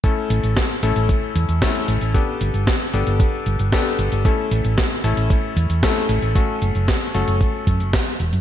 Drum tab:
HH |x-xxx-xxx-xxxxxx|x-xxx-xxx-xxxxxx|x-xxx-xxx-xxxxxx|x-xxx-xxx-xxxxxx|
SD |----o-------o---|----o-------o---|----o-------o---|----o-------o---|
BD |o---o---o---o---|o---o---o---o---|o---o---o---o---|o---o---o-o-o---|